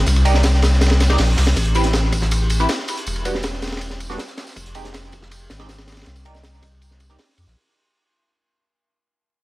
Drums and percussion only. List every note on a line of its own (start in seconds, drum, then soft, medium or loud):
0.06 kick loud
0.06 ride medium
0.06 tambourine medium
0.16 ride soft
0.25 ride medium
0.25 tambourine medium
0.34 snare medium
0.34 snare soft
0.43 snare loud
0.43 ride medium
0.43 tambourine medium
0.54 snare soft
0.62 snare loud
0.62 ride medium
0.62 tambourine medium
0.73 snare soft
0.81 snare medium
0.81 ride medium
0.81 tambourine medium
0.86 snare medium
0.86 ride medium
0.90 snare loud
0.90 ride medium
1.00 snare loud
1.00 ride medium
1.00 tambourine medium
1.10 snare loud
1.10 ride medium
1.18 snare loud
1.18 open hi-hat medium
1.18 ride medium
1.37 snare loud
1.37 open hi-hat medium
1.37 ride medium
1.47 snare loud
1.47 ride medium
1.56 kick loud
1.56 ride medium
1.56 tambourine medium
1.65 closed hi-hat soft
1.75 ride medium
1.75 tambourine medium
1.84 snare soft
1.84 closed hi-hat soft
1.93 snare loud
1.93 ride medium
1.93 tambourine medium
2.04 snare soft
2.12 kick medium
2.12 ride medium
2.12 tambourine medium
2.22 kick loud
2.22 snare medium
2.31 ride medium
2.31 tambourine medium
2.50 ride medium
2.50 tambourine medium
2.60 ride soft
2.69 snare loud
2.69 ride medium
2.69 tambourine medium
2.79 snare soft
2.88 ride medium
2.88 tambourine medium
2.97 closed hi-hat soft
3.06 ride medium
3.06 tambourine medium
3.16 ride soft
3.25 ride medium
3.25 tambourine medium
3.35 snare medium
3.35 snare soft
3.43 snare loud
3.43 ride medium
3.43 tambourine medium
3.53 snare medium
3.62 snare medium
3.62 ride medium
3.62 tambourine medium
3.67 snare medium
3.67 ride medium
3.72 snare medium
3.72 ride medium
3.77 snare medium
3.77 ride medium
3.81 ride medium
3.81 tambourine medium
3.90 snare medium
4.00 ride medium
4.00 tambourine medium
4.10 snare soft
4.18 snare loud
4.18 ride medium
4.18 tambourine medium
4.28 snare loud
4.28 tambourine medium
4.37 snare loud
4.37 ride medium
4.37 tambourine medium
4.47 snare loud
4.47 ride soft
4.47 tambourine medium
4.56 kick loud
4.56 ride medium
4.56 tambourine medium
4.66 closed hi-hat soft
4.75 ride medium
4.75 tambourine medium
4.85 snare soft
4.85 closed hi-hat soft
4.93 snare loud
4.93 ride medium
4.94 snare loud
4.94 tambourine medium
5.04 snare soft
5.12 kick medium
5.12 ride medium
5.12 tambourine medium
5.22 kick medium
5.22 snare soft
5.31 ride medium
5.31 tambourine medium
5.50 snare medium
5.50 ride medium
5.50 tambourine medium
5.59 snare medium
5.59 ride medium
5.69 snare loud
5.69 ride medium
5.69 tambourine medium
5.78 snare loud
5.78 ride medium
5.87 snare medium
5.87 ride medium
5.87 tambourine medium
5.92 snare medium
5.92 ride medium
5.97 snare medium
5.97 closed hi-hat soft
5.97 ride medium
6.01 snare medium
6.01 ride medium
6.01 tambourine medium
6.06 snare loud
6.06 ride medium
6.16 ride soft
6.16 tambourine medium
6.25 closed hi-hat soft
6.25 ride medium
6.35 snare medium
6.35 tambourine medium
6.43 snare loud
6.43 ride medium
6.43 tambourine medium
6.54 snare soft
6.62 kick loud
6.62 ride medium
6.62 tambourine medium
6.82 ride medium
6.82 tambourine medium
6.91 snare soft
7.00 ride medium
7.00 tambourine medium
7.10 snare soft
7.19 snare loud
7.19 open hi-hat medium
7.19 ride medium
7.29 snare soft
7.38 ride medium
7.38 tambourine medium
7.47 snare soft